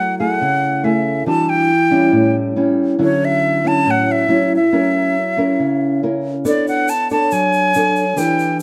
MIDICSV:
0, 0, Header, 1, 4, 480
1, 0, Start_track
1, 0, Tempo, 431655
1, 1416, Time_signature, 4, 2, 24, 8
1, 9590, End_track
2, 0, Start_track
2, 0, Title_t, "Flute"
2, 0, Program_c, 0, 73
2, 0, Note_on_c, 0, 78, 83
2, 202, Note_off_c, 0, 78, 0
2, 209, Note_on_c, 0, 78, 95
2, 938, Note_on_c, 0, 76, 79
2, 955, Note_off_c, 0, 78, 0
2, 1406, Note_off_c, 0, 76, 0
2, 1412, Note_on_c, 0, 81, 97
2, 1660, Note_on_c, 0, 79, 94
2, 1676, Note_off_c, 0, 81, 0
2, 2618, Note_off_c, 0, 79, 0
2, 3368, Note_on_c, 0, 73, 89
2, 3612, Note_on_c, 0, 76, 100
2, 3629, Note_off_c, 0, 73, 0
2, 4086, Note_on_c, 0, 81, 106
2, 4102, Note_off_c, 0, 76, 0
2, 4343, Note_on_c, 0, 78, 92
2, 4360, Note_off_c, 0, 81, 0
2, 4577, Note_on_c, 0, 76, 95
2, 4593, Note_off_c, 0, 78, 0
2, 5037, Note_off_c, 0, 76, 0
2, 5071, Note_on_c, 0, 76, 90
2, 6679, Note_off_c, 0, 76, 0
2, 7199, Note_on_c, 0, 74, 92
2, 7411, Note_off_c, 0, 74, 0
2, 7435, Note_on_c, 0, 78, 90
2, 7668, Note_on_c, 0, 81, 96
2, 7684, Note_off_c, 0, 78, 0
2, 7901, Note_off_c, 0, 81, 0
2, 7914, Note_on_c, 0, 81, 97
2, 8147, Note_on_c, 0, 80, 97
2, 8163, Note_off_c, 0, 81, 0
2, 9099, Note_on_c, 0, 79, 93
2, 9116, Note_off_c, 0, 80, 0
2, 9576, Note_off_c, 0, 79, 0
2, 9590, End_track
3, 0, Start_track
3, 0, Title_t, "Nylon-string guitar"
3, 0, Program_c, 1, 24
3, 0, Note_on_c, 1, 54, 63
3, 218, Note_on_c, 1, 57, 62
3, 225, Note_on_c, 1, 68, 64
3, 228, Note_on_c, 1, 64, 55
3, 427, Note_off_c, 1, 54, 0
3, 459, Note_on_c, 1, 49, 62
3, 899, Note_off_c, 1, 57, 0
3, 901, Note_off_c, 1, 64, 0
3, 902, Note_off_c, 1, 68, 0
3, 930, Note_on_c, 1, 57, 54
3, 935, Note_on_c, 1, 64, 60
3, 945, Note_on_c, 1, 68, 61
3, 1374, Note_off_c, 1, 57, 0
3, 1377, Note_off_c, 1, 64, 0
3, 1382, Note_off_c, 1, 68, 0
3, 1394, Note_off_c, 1, 49, 0
3, 1406, Note_on_c, 1, 52, 66
3, 1409, Note_on_c, 1, 55, 48
3, 1414, Note_on_c, 1, 62, 49
3, 1422, Note_on_c, 1, 66, 55
3, 1889, Note_off_c, 1, 55, 0
3, 1893, Note_off_c, 1, 62, 0
3, 1895, Note_off_c, 1, 66, 0
3, 2120, Note_on_c, 1, 55, 58
3, 2127, Note_on_c, 1, 61, 55
3, 2135, Note_on_c, 1, 64, 69
3, 2347, Note_off_c, 1, 52, 0
3, 2359, Note_on_c, 1, 45, 63
3, 2810, Note_off_c, 1, 55, 0
3, 2813, Note_off_c, 1, 61, 0
3, 2817, Note_off_c, 1, 64, 0
3, 2848, Note_on_c, 1, 55, 53
3, 2855, Note_on_c, 1, 61, 55
3, 2859, Note_on_c, 1, 64, 62
3, 3295, Note_off_c, 1, 55, 0
3, 3296, Note_off_c, 1, 61, 0
3, 3299, Note_off_c, 1, 64, 0
3, 3304, Note_off_c, 1, 45, 0
3, 3319, Note_on_c, 1, 54, 47
3, 3323, Note_on_c, 1, 50, 66
3, 3326, Note_on_c, 1, 61, 52
3, 3334, Note_on_c, 1, 64, 60
3, 4009, Note_off_c, 1, 54, 0
3, 4014, Note_off_c, 1, 61, 0
3, 4016, Note_off_c, 1, 64, 0
3, 4050, Note_on_c, 1, 54, 57
3, 4055, Note_on_c, 1, 61, 65
3, 4059, Note_on_c, 1, 64, 65
3, 4266, Note_off_c, 1, 50, 0
3, 4290, Note_on_c, 1, 45, 66
3, 4736, Note_off_c, 1, 54, 0
3, 4737, Note_off_c, 1, 61, 0
3, 4739, Note_off_c, 1, 64, 0
3, 4763, Note_on_c, 1, 54, 52
3, 4773, Note_on_c, 1, 61, 54
3, 4779, Note_on_c, 1, 64, 61
3, 5079, Note_off_c, 1, 54, 0
3, 5084, Note_off_c, 1, 61, 0
3, 5087, Note_off_c, 1, 64, 0
3, 5229, Note_off_c, 1, 45, 0
3, 5252, Note_on_c, 1, 54, 66
3, 5255, Note_on_c, 1, 61, 58
3, 5264, Note_on_c, 1, 64, 54
3, 5269, Note_on_c, 1, 70, 56
3, 5734, Note_off_c, 1, 61, 0
3, 5736, Note_off_c, 1, 64, 0
3, 5740, Note_off_c, 1, 70, 0
3, 5972, Note_on_c, 1, 61, 54
3, 5979, Note_on_c, 1, 64, 63
3, 5987, Note_on_c, 1, 70, 59
3, 6190, Note_off_c, 1, 54, 0
3, 6219, Note_on_c, 1, 49, 61
3, 6656, Note_off_c, 1, 61, 0
3, 6659, Note_off_c, 1, 64, 0
3, 6661, Note_off_c, 1, 70, 0
3, 6706, Note_on_c, 1, 61, 53
3, 6711, Note_on_c, 1, 64, 47
3, 6715, Note_on_c, 1, 70, 55
3, 7010, Note_off_c, 1, 61, 0
3, 7012, Note_off_c, 1, 64, 0
3, 7014, Note_off_c, 1, 70, 0
3, 7153, Note_off_c, 1, 49, 0
3, 7170, Note_on_c, 1, 59, 66
3, 7171, Note_on_c, 1, 62, 51
3, 7173, Note_on_c, 1, 69, 53
3, 7173, Note_on_c, 1, 73, 53
3, 7649, Note_off_c, 1, 69, 0
3, 7650, Note_off_c, 1, 62, 0
3, 7651, Note_off_c, 1, 73, 0
3, 7906, Note_on_c, 1, 62, 56
3, 7908, Note_on_c, 1, 69, 62
3, 7911, Note_on_c, 1, 73, 69
3, 8109, Note_off_c, 1, 59, 0
3, 8141, Note_on_c, 1, 54, 66
3, 8581, Note_off_c, 1, 62, 0
3, 8581, Note_off_c, 1, 69, 0
3, 8584, Note_off_c, 1, 73, 0
3, 8622, Note_on_c, 1, 62, 55
3, 8630, Note_on_c, 1, 73, 62
3, 8631, Note_on_c, 1, 69, 56
3, 8928, Note_off_c, 1, 62, 0
3, 8929, Note_off_c, 1, 69, 0
3, 8930, Note_off_c, 1, 73, 0
3, 9073, Note_off_c, 1, 54, 0
3, 9076, Note_on_c, 1, 62, 47
3, 9082, Note_on_c, 1, 52, 64
3, 9088, Note_on_c, 1, 67, 54
3, 9090, Note_on_c, 1, 71, 55
3, 9561, Note_off_c, 1, 62, 0
3, 9565, Note_off_c, 1, 67, 0
3, 9568, Note_off_c, 1, 71, 0
3, 9590, Note_off_c, 1, 52, 0
3, 9590, End_track
4, 0, Start_track
4, 0, Title_t, "Drums"
4, 7179, Note_on_c, 9, 82, 63
4, 7290, Note_off_c, 9, 82, 0
4, 7421, Note_on_c, 9, 82, 25
4, 7533, Note_off_c, 9, 82, 0
4, 7653, Note_on_c, 9, 82, 65
4, 7764, Note_off_c, 9, 82, 0
4, 7893, Note_on_c, 9, 82, 24
4, 8004, Note_off_c, 9, 82, 0
4, 8131, Note_on_c, 9, 82, 58
4, 8242, Note_off_c, 9, 82, 0
4, 8372, Note_on_c, 9, 82, 25
4, 8483, Note_off_c, 9, 82, 0
4, 8606, Note_on_c, 9, 82, 57
4, 8717, Note_off_c, 9, 82, 0
4, 8849, Note_on_c, 9, 82, 25
4, 8960, Note_off_c, 9, 82, 0
4, 9090, Note_on_c, 9, 82, 60
4, 9202, Note_off_c, 9, 82, 0
4, 9331, Note_on_c, 9, 82, 26
4, 9442, Note_off_c, 9, 82, 0
4, 9590, End_track
0, 0, End_of_file